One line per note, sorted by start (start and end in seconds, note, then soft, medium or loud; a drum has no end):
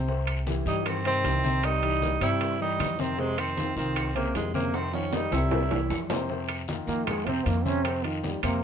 0.00 0.60 C2 medium
0.08 0.40 C3 medium
0.08 0.40 C4 medium
0.08 0.40 C5 medium
0.08 high bongo medium
0.08 high conga soft
0.08 long guiro medium
0.27 high bongo soft
0.27 high conga soft
0.27 high timbale medium
0.27 claves medium
0.47 0.63 E3 medium
0.47 0.63 E4 medium
0.47 0.63 G4 medium
0.47 high bongo medium
0.47 high conga loud
0.47 short guiro medium
0.66 1.20 G2 medium
0.66 0.98 E3 medium
0.66 0.88 G3 medium
0.66 0.89 D#4 medium
0.66 0.98 E4 medium
0.66 0.98 G4 medium
0.66 high conga soft
0.66 short guiro medium
0.86 1.05 D#3 medium
0.86 1.06 C4 medium
0.86 high bongo medium
0.86 high conga soft
0.86 high timbale medium
0.86 long guiro medium
0.86 claves medium
1.05 1.21 C3 medium
1.05 1.65 D#3 medium
1.05 1.21 C4 medium
1.05 1.67 C4 loud
1.05 1.21 C5 medium
1.05 high bongo soft
1.05 high conga soft
1.05 high timbale medium
1.24 2.15 C2 medium
1.24 1.40 E3 medium
1.24 1.40 E4 medium
1.24 1.41 G4 medium
1.24 high bongo soft
1.24 low bongo medium
1.24 high conga soft
1.24 high timbale medium
1.24 short guiro medium
1.44 1.76 C3 medium
1.44 1.76 C4 medium
1.44 1.76 C5 medium
1.44 high conga medium
1.44 short guiro medium
1.63 2.20 G3 medium
1.63 2.22 D#4 loud
1.63 high bongo medium
1.63 high conga soft
1.63 high timbale medium
1.63 long guiro medium
1.63 claves medium
1.83 2.14 E3 medium
1.83 2.15 D#4 medium
1.83 2.15 G4 medium
1.83 high bongo soft
1.83 high conga soft
1.83 high timbale medium
2.02 high bongo medium
2.02 high conga medium
2.02 short guiro medium
2.21 2.75 G2 medium
2.21 2.53 C3 medium
2.21 2.57 G3 medium
2.21 2.53 C4 medium
2.21 2.58 E4 medium
2.21 2.54 C5 medium
2.21 high conga soft
2.21 high timbale medium
2.21 short guiro medium
2.21 claves medium
2.40 high bongo medium
2.40 high conga soft
2.40 high timbale medium
2.40 long guiro medium
2.60 2.92 E3 medium
2.60 3.00 G3 medium
2.60 2.92 D#4 medium
2.60 3.02 D#4 loud
2.60 2.92 G4 medium
2.60 high bongo soft
2.60 high conga soft
2.79 3.71 F2 medium
2.79 high bongo soft
2.79 low bongo medium
2.79 high conga medium
2.79 high timbale medium
2.79 short guiro medium
2.79 claves medium
2.99 3.15 C3 medium
2.99 3.21 D#3 medium
2.99 3.15 C4 medium
2.99 3.21 C4 medium
2.99 3.15 C5 medium
2.99 high conga medium
2.99 short guiro medium
3.18 3.50 C3 medium
3.18 3.39 C3 medium
3.18 3.40 G#3 loud
3.18 3.50 C4 medium
3.18 3.51 C5 medium
3.18 high bongo medium
3.18 high conga soft
3.18 long guiro medium
3.37 3.76 D#3 medium
3.37 3.77 C4 medium
3.37 high conga soft
3.37 high timbale medium
3.37 claves medium
3.57 3.73 D#3 medium
3.57 3.73 D#4 medium
3.57 3.74 F4 medium
3.57 high bongo medium
3.57 high conga medium
3.57 short guiro medium
3.76 4.31 C2 medium
3.76 4.13 D#3 medium
3.76 4.09 D#3 medium
3.76 4.13 C4 medium
3.76 4.09 D#4 medium
3.76 4.09 F4 medium
3.76 high conga soft
3.76 short guiro medium
3.96 high bongo medium
3.96 high conga soft
3.96 high timbale loud
3.96 long guiro medium
3.96 claves medium
4.15 4.31 C3 medium
4.15 4.33 C#3 medium
4.15 4.34 A#3 medium
4.15 4.31 C4 medium
4.15 4.32 C5 medium
4.15 high bongo soft
4.15 high conga soft
4.15 high timbale medium
4.35 5.26 F2 medium
4.35 4.53 C3 medium
4.35 4.51 D#3 medium
4.35 4.54 G#3 medium
4.35 4.51 F4 medium
4.35 high bongo soft
4.35 low bongo medium
4.35 high conga soft
4.35 high timbale medium
4.35 low timbale medium
4.35 short guiro medium
4.54 4.86 C3 medium
4.54 4.75 C#3 medium
4.54 4.76 A#3 medium
4.54 4.86 C4 medium
4.54 4.87 C5 medium
4.54 high conga medium
4.54 short guiro medium
4.74 4.92 D#3 medium
4.74 4.94 C4 medium
4.74 high bongo medium
4.74 high conga soft
4.74 high timbale medium
4.74 long guiro medium
4.74 claves medium
4.93 5.25 D#3 medium
4.93 5.14 F3 medium
4.93 5.15 C#4 medium
4.93 5.25 D#4 medium
4.93 5.26 F4 medium
4.93 high bongo soft
4.93 high conga soft
4.93 high timbale medium
5.12 5.32 G3 medium
5.12 5.35 D#4 loud
5.12 high bongo medium
5.12 high conga medium
5.12 high timbale medium
5.12 short guiro medium
5.32 5.86 C2 medium
5.32 5.64 C3 medium
5.32 6.10 G3 medium
5.32 5.64 C4 medium
5.32 6.11 E4 medium
5.32 5.65 C5 medium
5.32 high conga medium
5.32 low timbale medium
5.32 short guiro medium
5.32 claves medium
5.51 high bongo medium
5.51 low conga medium
5.51 low timbale loud
5.51 long guiro medium
5.71 6.03 E3 medium
5.71 6.03 E4 medium
5.71 6.03 G4 medium
5.71 high bongo medium
5.71 low conga medium
5.71 low timbale medium
5.90 6.82 F2 medium
5.90 low bongo medium
5.90 low timbale medium
5.90 short guiro medium
5.90 claves medium
6.10 6.26 C3 medium
6.10 6.26 C4 medium
6.10 6.26 C5 medium
6.10 low bongo loud
6.10 low conga medium
6.10 low timbale medium
6.10 short guiro medium
6.29 6.61 C3 medium
6.29 6.61 C4 medium
6.29 6.62 C5 medium
6.29 high bongo medium
6.29 high conga soft
6.29 long guiro medium
6.48 high bongo soft
6.48 high conga soft
6.48 high timbale medium
6.48 claves medium
6.68 6.84 D#3 medium
6.68 6.84 D#4 medium
6.68 6.85 F4 medium
6.68 high bongo medium
6.68 high conga medium
6.68 short guiro medium
6.87 7.42 F2 medium
6.87 7.20 D#3 medium
6.87 7.08 A#3 medium
6.87 7.20 D#4 medium
6.87 7.20 F4 medium
6.87 high conga soft
6.87 short guiro medium
7.07 7.27 G#3 medium
7.07 high bongo medium
7.07 high conga soft
7.07 low conga medium
7.07 high timbale loud
7.07 long guiro medium
7.07 claves medium
7.26 7.43 C3 medium
7.26 7.48 C4 medium
7.26 7.43 C4 medium
7.26 7.43 C5 medium
7.26 high bongo soft
7.26 high conga soft
7.26 low conga medium
7.26 high timbale medium
7.46 8.37 F2 loud
7.46 7.62 D#3 medium
7.46 7.66 A#3 medium
7.46 7.62 D#4 medium
7.46 7.63 F4 medium
7.46 high bongo soft
7.46 low bongo medium
7.46 high conga soft
7.46 high timbale medium
7.46 short guiro medium
7.65 7.97 C3 medium
7.65 7.98 C4 medium
7.65 7.87 C#4 loud
7.65 7.98 C5 medium
7.65 high conga medium
7.65 short guiro medium
7.85 8.06 C4 medium
7.85 high bongo medium
7.85 high conga soft
7.85 high timbale medium
7.85 long guiro medium
7.85 claves medium
8.04 8.25 D#3 medium
8.04 8.36 D#3 medium
8.04 8.37 D#4 medium
8.04 8.37 F4 medium
8.04 high bongo soft
8.04 high conga soft
8.04 high timbale medium
8.23 8.43 G3 medium
8.23 high bongo medium
8.23 high conga medium
8.23 short guiro medium
8.43 8.63 F2 medium
8.43 8.63 C3 medium
8.43 8.63 A#3 medium
8.43 8.63 C4 medium
8.43 8.63 C5 medium
8.43 high conga soft
8.43 high timbale medium
8.43 short guiro medium
8.43 claves medium